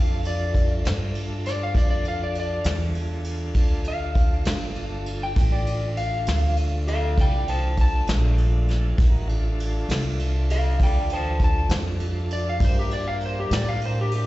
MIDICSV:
0, 0, Header, 1, 6, 480
1, 0, Start_track
1, 0, Key_signature, -1, "minor"
1, 0, Tempo, 603015
1, 1398, Time_signature, 12, 3, 24, 8
1, 11354, End_track
2, 0, Start_track
2, 0, Title_t, "Electric slide guitar"
2, 0, Program_c, 0, 29
2, 0, Note_on_c, 0, 77, 82
2, 197, Note_off_c, 0, 77, 0
2, 214, Note_on_c, 0, 74, 74
2, 672, Note_off_c, 0, 74, 0
2, 1168, Note_on_c, 0, 74, 90
2, 1279, Note_off_c, 0, 74, 0
2, 1300, Note_on_c, 0, 77, 94
2, 1405, Note_off_c, 0, 77, 0
2, 1408, Note_on_c, 0, 74, 80
2, 1506, Note_off_c, 0, 74, 0
2, 1516, Note_on_c, 0, 74, 87
2, 1633, Note_off_c, 0, 74, 0
2, 1657, Note_on_c, 0, 77, 77
2, 1764, Note_off_c, 0, 77, 0
2, 1779, Note_on_c, 0, 74, 87
2, 1885, Note_off_c, 0, 74, 0
2, 1908, Note_on_c, 0, 74, 98
2, 2125, Note_off_c, 0, 74, 0
2, 3088, Note_on_c, 0, 77, 78
2, 4129, Note_off_c, 0, 77, 0
2, 4165, Note_on_c, 0, 79, 95
2, 4393, Note_off_c, 0, 79, 0
2, 4395, Note_on_c, 0, 74, 79
2, 4744, Note_off_c, 0, 74, 0
2, 4755, Note_on_c, 0, 77, 104
2, 5221, Note_off_c, 0, 77, 0
2, 5474, Note_on_c, 0, 69, 76
2, 5482, Note_on_c, 0, 77, 88
2, 5712, Note_off_c, 0, 77, 0
2, 5715, Note_off_c, 0, 69, 0
2, 5732, Note_on_c, 0, 74, 74
2, 5737, Note_on_c, 0, 79, 81
2, 5948, Note_off_c, 0, 74, 0
2, 5960, Note_off_c, 0, 79, 0
2, 5964, Note_on_c, 0, 72, 66
2, 5966, Note_on_c, 0, 81, 79
2, 6184, Note_off_c, 0, 72, 0
2, 6193, Note_off_c, 0, 81, 0
2, 6216, Note_on_c, 0, 81, 98
2, 6439, Note_off_c, 0, 81, 0
2, 8365, Note_on_c, 0, 69, 76
2, 8371, Note_on_c, 0, 77, 85
2, 8598, Note_off_c, 0, 77, 0
2, 8602, Note_off_c, 0, 69, 0
2, 8622, Note_on_c, 0, 74, 69
2, 8622, Note_on_c, 0, 79, 79
2, 8835, Note_off_c, 0, 74, 0
2, 8843, Note_off_c, 0, 79, 0
2, 8861, Note_on_c, 0, 72, 78
2, 8869, Note_on_c, 0, 81, 86
2, 9074, Note_off_c, 0, 72, 0
2, 9087, Note_off_c, 0, 81, 0
2, 9108, Note_on_c, 0, 81, 90
2, 9327, Note_off_c, 0, 81, 0
2, 9813, Note_on_c, 0, 74, 86
2, 9923, Note_off_c, 0, 74, 0
2, 9945, Note_on_c, 0, 77, 77
2, 10049, Note_off_c, 0, 77, 0
2, 10067, Note_on_c, 0, 72, 91
2, 10170, Note_off_c, 0, 72, 0
2, 10181, Note_on_c, 0, 67, 80
2, 10287, Note_off_c, 0, 67, 0
2, 10291, Note_on_c, 0, 74, 80
2, 10402, Note_off_c, 0, 74, 0
2, 10409, Note_on_c, 0, 77, 93
2, 10520, Note_off_c, 0, 77, 0
2, 10553, Note_on_c, 0, 72, 88
2, 10653, Note_off_c, 0, 72, 0
2, 10664, Note_on_c, 0, 67, 82
2, 10768, Note_off_c, 0, 67, 0
2, 10784, Note_on_c, 0, 74, 87
2, 10888, Note_off_c, 0, 74, 0
2, 10893, Note_on_c, 0, 77, 87
2, 11003, Note_off_c, 0, 77, 0
2, 11029, Note_on_c, 0, 72, 76
2, 11131, Note_off_c, 0, 72, 0
2, 11153, Note_on_c, 0, 67, 88
2, 11253, Note_off_c, 0, 67, 0
2, 11268, Note_on_c, 0, 67, 85
2, 11354, Note_off_c, 0, 67, 0
2, 11354, End_track
3, 0, Start_track
3, 0, Title_t, "Tonewheel organ"
3, 0, Program_c, 1, 16
3, 0, Note_on_c, 1, 62, 60
3, 0, Note_on_c, 1, 65, 64
3, 0, Note_on_c, 1, 69, 59
3, 1369, Note_off_c, 1, 62, 0
3, 1369, Note_off_c, 1, 65, 0
3, 1370, Note_off_c, 1, 69, 0
3, 1379, Note_on_c, 1, 65, 72
3, 1382, Note_on_c, 1, 62, 68
3, 1387, Note_on_c, 1, 69, 71
3, 4237, Note_off_c, 1, 65, 0
3, 4239, Note_off_c, 1, 62, 0
3, 4241, Note_off_c, 1, 69, 0
3, 4283, Note_on_c, 1, 65, 61
3, 4284, Note_on_c, 1, 57, 67
3, 4286, Note_on_c, 1, 62, 67
3, 7132, Note_off_c, 1, 57, 0
3, 7132, Note_off_c, 1, 65, 0
3, 7134, Note_off_c, 1, 62, 0
3, 7134, Note_on_c, 1, 70, 59
3, 7142, Note_on_c, 1, 63, 58
3, 7142, Note_on_c, 1, 66, 58
3, 7376, Note_on_c, 1, 62, 71
3, 7380, Note_on_c, 1, 65, 62
3, 7384, Note_on_c, 1, 69, 63
3, 7386, Note_off_c, 1, 70, 0
3, 7390, Note_off_c, 1, 63, 0
3, 7390, Note_off_c, 1, 66, 0
3, 10002, Note_off_c, 1, 62, 0
3, 10004, Note_off_c, 1, 65, 0
3, 10006, Note_off_c, 1, 69, 0
3, 10049, Note_on_c, 1, 70, 69
3, 10052, Note_on_c, 1, 62, 61
3, 10054, Note_on_c, 1, 67, 62
3, 11354, Note_off_c, 1, 62, 0
3, 11354, Note_off_c, 1, 67, 0
3, 11354, Note_off_c, 1, 70, 0
3, 11354, End_track
4, 0, Start_track
4, 0, Title_t, "Horn section"
4, 0, Program_c, 2, 61
4, 10017, Note_on_c, 2, 58, 62
4, 10017, Note_on_c, 2, 62, 65
4, 10017, Note_on_c, 2, 67, 90
4, 10017, Note_on_c, 2, 70, 67
4, 11354, Note_off_c, 2, 58, 0
4, 11354, Note_off_c, 2, 62, 0
4, 11354, Note_off_c, 2, 67, 0
4, 11354, Note_off_c, 2, 70, 0
4, 11354, End_track
5, 0, Start_track
5, 0, Title_t, "Upright bass"
5, 0, Program_c, 3, 32
5, 0, Note_on_c, 3, 41, 73
5, 654, Note_off_c, 3, 41, 0
5, 683, Note_on_c, 3, 43, 95
5, 1378, Note_off_c, 3, 43, 0
5, 1394, Note_on_c, 3, 41, 73
5, 2093, Note_off_c, 3, 41, 0
5, 2112, Note_on_c, 3, 40, 93
5, 2812, Note_off_c, 3, 40, 0
5, 2827, Note_on_c, 3, 38, 73
5, 3529, Note_off_c, 3, 38, 0
5, 3550, Note_on_c, 3, 31, 87
5, 4251, Note_off_c, 3, 31, 0
5, 4272, Note_on_c, 3, 33, 79
5, 4972, Note_off_c, 3, 33, 0
5, 4997, Note_on_c, 3, 38, 92
5, 5695, Note_off_c, 3, 38, 0
5, 5709, Note_on_c, 3, 36, 78
5, 6411, Note_off_c, 3, 36, 0
5, 6437, Note_on_c, 3, 34, 92
5, 7136, Note_off_c, 3, 34, 0
5, 7155, Note_on_c, 3, 33, 69
5, 7855, Note_off_c, 3, 33, 0
5, 7871, Note_on_c, 3, 36, 92
5, 8573, Note_off_c, 3, 36, 0
5, 8596, Note_on_c, 3, 38, 80
5, 9296, Note_off_c, 3, 38, 0
5, 9307, Note_on_c, 3, 41, 94
5, 10011, Note_off_c, 3, 41, 0
5, 10036, Note_on_c, 3, 43, 72
5, 10736, Note_off_c, 3, 43, 0
5, 10753, Note_on_c, 3, 45, 94
5, 11354, Note_off_c, 3, 45, 0
5, 11354, End_track
6, 0, Start_track
6, 0, Title_t, "Drums"
6, 198, Note_on_c, 9, 51, 59
6, 278, Note_off_c, 9, 51, 0
6, 434, Note_on_c, 9, 36, 61
6, 435, Note_on_c, 9, 51, 60
6, 514, Note_off_c, 9, 36, 0
6, 515, Note_off_c, 9, 51, 0
6, 676, Note_on_c, 9, 51, 78
6, 690, Note_on_c, 9, 38, 105
6, 756, Note_off_c, 9, 51, 0
6, 770, Note_off_c, 9, 38, 0
6, 915, Note_on_c, 9, 51, 53
6, 994, Note_off_c, 9, 51, 0
6, 1158, Note_on_c, 9, 51, 57
6, 1172, Note_on_c, 9, 38, 26
6, 1238, Note_off_c, 9, 51, 0
6, 1252, Note_off_c, 9, 38, 0
6, 1390, Note_on_c, 9, 51, 78
6, 1391, Note_on_c, 9, 36, 99
6, 1470, Note_off_c, 9, 51, 0
6, 1471, Note_off_c, 9, 36, 0
6, 1631, Note_on_c, 9, 51, 58
6, 1710, Note_off_c, 9, 51, 0
6, 1870, Note_on_c, 9, 51, 58
6, 1950, Note_off_c, 9, 51, 0
6, 2102, Note_on_c, 9, 51, 73
6, 2117, Note_on_c, 9, 38, 100
6, 2182, Note_off_c, 9, 51, 0
6, 2196, Note_off_c, 9, 38, 0
6, 2346, Note_on_c, 9, 51, 56
6, 2426, Note_off_c, 9, 51, 0
6, 2582, Note_on_c, 9, 51, 59
6, 2662, Note_off_c, 9, 51, 0
6, 2821, Note_on_c, 9, 51, 73
6, 2825, Note_on_c, 9, 36, 78
6, 2901, Note_off_c, 9, 51, 0
6, 2905, Note_off_c, 9, 36, 0
6, 3059, Note_on_c, 9, 51, 58
6, 3138, Note_off_c, 9, 51, 0
6, 3303, Note_on_c, 9, 51, 50
6, 3306, Note_on_c, 9, 36, 69
6, 3383, Note_off_c, 9, 51, 0
6, 3386, Note_off_c, 9, 36, 0
6, 3542, Note_on_c, 9, 51, 82
6, 3556, Note_on_c, 9, 38, 108
6, 3622, Note_off_c, 9, 51, 0
6, 3636, Note_off_c, 9, 38, 0
6, 3780, Note_on_c, 9, 51, 47
6, 3860, Note_off_c, 9, 51, 0
6, 4028, Note_on_c, 9, 51, 55
6, 4108, Note_off_c, 9, 51, 0
6, 4266, Note_on_c, 9, 51, 87
6, 4269, Note_on_c, 9, 36, 97
6, 4346, Note_off_c, 9, 51, 0
6, 4349, Note_off_c, 9, 36, 0
6, 4510, Note_on_c, 9, 51, 65
6, 4589, Note_off_c, 9, 51, 0
6, 4751, Note_on_c, 9, 51, 61
6, 4831, Note_off_c, 9, 51, 0
6, 4988, Note_on_c, 9, 51, 84
6, 5002, Note_on_c, 9, 38, 99
6, 5067, Note_off_c, 9, 51, 0
6, 5082, Note_off_c, 9, 38, 0
6, 5228, Note_on_c, 9, 51, 63
6, 5307, Note_off_c, 9, 51, 0
6, 5474, Note_on_c, 9, 51, 64
6, 5553, Note_off_c, 9, 51, 0
6, 5712, Note_on_c, 9, 36, 77
6, 5716, Note_on_c, 9, 51, 69
6, 5792, Note_off_c, 9, 36, 0
6, 5795, Note_off_c, 9, 51, 0
6, 5951, Note_on_c, 9, 51, 58
6, 6031, Note_off_c, 9, 51, 0
6, 6186, Note_on_c, 9, 51, 51
6, 6189, Note_on_c, 9, 36, 70
6, 6265, Note_off_c, 9, 51, 0
6, 6268, Note_off_c, 9, 36, 0
6, 6425, Note_on_c, 9, 51, 76
6, 6440, Note_on_c, 9, 38, 109
6, 6505, Note_off_c, 9, 51, 0
6, 6519, Note_off_c, 9, 38, 0
6, 6669, Note_on_c, 9, 51, 46
6, 6749, Note_off_c, 9, 51, 0
6, 6912, Note_on_c, 9, 51, 55
6, 6927, Note_on_c, 9, 38, 29
6, 6992, Note_off_c, 9, 51, 0
6, 7006, Note_off_c, 9, 38, 0
6, 7150, Note_on_c, 9, 36, 107
6, 7150, Note_on_c, 9, 51, 78
6, 7230, Note_off_c, 9, 36, 0
6, 7230, Note_off_c, 9, 51, 0
6, 7395, Note_on_c, 9, 51, 55
6, 7474, Note_off_c, 9, 51, 0
6, 7640, Note_on_c, 9, 51, 60
6, 7720, Note_off_c, 9, 51, 0
6, 7876, Note_on_c, 9, 51, 78
6, 7890, Note_on_c, 9, 38, 107
6, 7956, Note_off_c, 9, 51, 0
6, 7970, Note_off_c, 9, 38, 0
6, 8115, Note_on_c, 9, 51, 60
6, 8194, Note_off_c, 9, 51, 0
6, 8357, Note_on_c, 9, 51, 66
6, 8437, Note_off_c, 9, 51, 0
6, 8595, Note_on_c, 9, 36, 75
6, 8598, Note_on_c, 9, 51, 73
6, 8674, Note_off_c, 9, 36, 0
6, 8677, Note_off_c, 9, 51, 0
6, 8833, Note_on_c, 9, 51, 62
6, 8912, Note_off_c, 9, 51, 0
6, 9073, Note_on_c, 9, 36, 73
6, 9075, Note_on_c, 9, 51, 51
6, 9153, Note_off_c, 9, 36, 0
6, 9154, Note_off_c, 9, 51, 0
6, 9308, Note_on_c, 9, 51, 91
6, 9323, Note_on_c, 9, 38, 113
6, 9388, Note_off_c, 9, 51, 0
6, 9402, Note_off_c, 9, 38, 0
6, 9550, Note_on_c, 9, 51, 58
6, 9629, Note_off_c, 9, 51, 0
6, 9796, Note_on_c, 9, 51, 62
6, 9875, Note_off_c, 9, 51, 0
6, 10032, Note_on_c, 9, 36, 103
6, 10035, Note_on_c, 9, 51, 72
6, 10112, Note_off_c, 9, 36, 0
6, 10114, Note_off_c, 9, 51, 0
6, 10276, Note_on_c, 9, 51, 62
6, 10355, Note_off_c, 9, 51, 0
6, 10512, Note_on_c, 9, 51, 51
6, 10592, Note_off_c, 9, 51, 0
6, 10754, Note_on_c, 9, 51, 80
6, 10769, Note_on_c, 9, 38, 115
6, 10834, Note_off_c, 9, 51, 0
6, 10848, Note_off_c, 9, 38, 0
6, 10996, Note_on_c, 9, 51, 59
6, 11076, Note_off_c, 9, 51, 0
6, 11234, Note_on_c, 9, 51, 68
6, 11314, Note_off_c, 9, 51, 0
6, 11354, End_track
0, 0, End_of_file